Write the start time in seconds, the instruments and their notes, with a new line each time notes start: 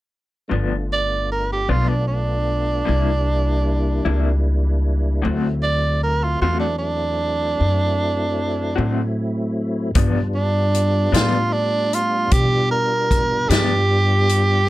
0.48 upright bass G1, clean electric guitar G2 F3 B3 D4, tonewheel organ A3 B3 D4 F4
0.93 tenor saxophone D5
1.32 tenor saxophone A#4
1.53 tenor saxophone G4
1.69 upright bass B1, clean electric guitar G2 F3 B3 D4, tenor saxophone F4
1.88 tenor saxophone D4
2.07 tenor saxophone D4
2.85 upright bass C2, clean electric guitar C3 G3 A#3 E4, tonewheel organ G3
2.89 tonewheel organ A#3 D4 E4
4.05 upright bass C#2, clean electric guitar C3 G3 A#3 E4
5.22 upright bass D2, clean electric guitar D3 A3 C4 F#4, tonewheel organ F#3 A3 C4 E4
5.63 tenor saxophone D5
6.03 tenor saxophone A#4
6.24 tenor saxophone F4
6.42 upright bass E2, clean electric guitar D3 A3 C4 F#4, tenor saxophone F4
6.60 tenor saxophone D4
6.78 tenor saxophone D4
7.61 upright bass F#2
8.76 upright bass A2, clean electric guitar D3 A3 C4 F#4
9.95 clean electric guitar G2 F3 B3 D4, upright bass G2, tonewheel organ G3 B3 D4 F4, kick, closed hi-hat
10.35 tenor saxophone D4
10.74 closed hi-hat
11.12 clean electric guitar G2 F3 B3 D4, upright bass A2, tenor saxophone F4, snare, closed hi-hat
11.52 tenor saxophone D4
11.93 tenor saxophone F4, closed hi-hat
12.31 upright bass B2, tenor saxophone G4, kick, closed hi-hat
12.71 tenor saxophone A#4
13.11 kick, closed hi-hat
13.49 upright bass G2, clean electric guitar G2 F3 B3 D4, tenor saxophone G4, snare, closed hi-hat
14.29 closed hi-hat